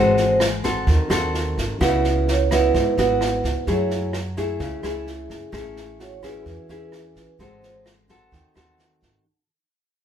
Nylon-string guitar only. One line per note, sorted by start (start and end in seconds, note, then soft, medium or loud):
0.00 0.85 G#3 medium
0.00 0.40 C4 medium
0.00 0.40 F#4 medium
0.00 0.40 A4 medium
0.64 1.07 C4 medium
0.64 1.07 F#4 medium
0.64 1.07 A4 medium
0.88 1.78 D#3 soft
1.10 1.76 C4 medium
1.10 1.77 F#4 medium
1.10 1.77 A4 medium
1.81 2.71 C#3 medium
1.81 2.46 B3 medium
1.81 2.46 E4 soft
1.81 2.47 F#4 medium
2.51 2.94 B3 medium
2.51 2.94 E4 medium
2.51 2.94 F#4 medium
2.74 3.65 G#2 medium
2.98 3.63 B3 medium
2.98 3.64 E4 soft
2.98 3.64 F#4 medium
3.68 4.58 F#3 medium
3.68 4.13 A3 medium
3.68 4.13 E4 medium
3.68 4.14 G#4 soft
4.37 4.80 A3 medium
4.37 4.80 E4 medium
4.37 4.80 G#4 medium
4.60 5.51 C#3 medium
4.83 5.49 A3 medium
4.83 5.50 E4 medium
4.83 5.50 G#4 medium
5.52 6.43 A3 medium
5.52 6.19 C#4 medium
5.52 6.19 E4 medium
5.52 6.19 G#4 medium
6.23 6.65 C#4 medium
6.23 6.66 E4 medium
6.23 6.66 G#4 medium
6.46 7.37 E3 soft
6.69 7.35 C#4 medium
6.69 7.36 E4 medium
6.69 7.36 G#4 medium
7.39 8.30 G#3 soft
7.39 8.06 C4 medium
7.39 8.06 F#4 soft
7.39 8.06 A4 medium
8.09 8.52 C4 medium
8.09 8.52 F#4 soft
8.09 8.53 A4 medium
8.33 9.23 D#3 soft
8.56 9.22 C4 medium
8.56 9.22 F#4 soft
8.56 9.22 A4 soft